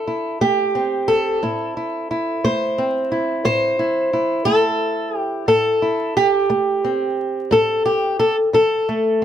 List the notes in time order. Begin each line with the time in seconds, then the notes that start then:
Already playing: A4
0.07 E4
0.41 A3 G4
0.75 C4
1.08 A4
1.43 A2 E4
1.77 E4
2.11 E4
2.44 A3 C5
2.78 C4
3.12 E4
3.45 A2 C5
3.79 E4
4.13 E4
4.45 A3 A4
5.17 G4
5.48 A2 A4
5.82 E4
6.17 G4
6.50 A3
6.84 C4
7.51 A2 A4
7.86 G4
8.19 A4
8.53 E3 A4
8.89 A3